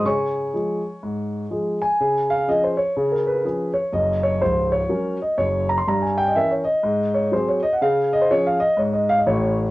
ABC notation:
X:1
M:4/4
L:1/16
Q:"Swing" 1/4=124
K:Db
V:1 name="Grand piano"
[dad']12 z2 a2- | a2 f2 e c d3 B _c4 d2 | e2 d2 c2 d4 e2 d2 b c' | b a =g e =e d _e4 d2 c d e _g |
f2 e c d f e2 d e f e d2 z2 |]
V:2 name="Grand piano" clef=bass
D,4 [F,A,A]4 A,,4 [F,A,A]4 | D,4 [F,DA]4 D,4 [F,DA]4 | [G,,,G,,]4 [D,,,D,,]4 [G,DB]4 [G,,,G,,]4 | =G,,4 [=E,DB]4 A,,4 [_G,CA]4 |
D,4 [F,DA]4 A,,4 [=A,,,=A,,]4 |]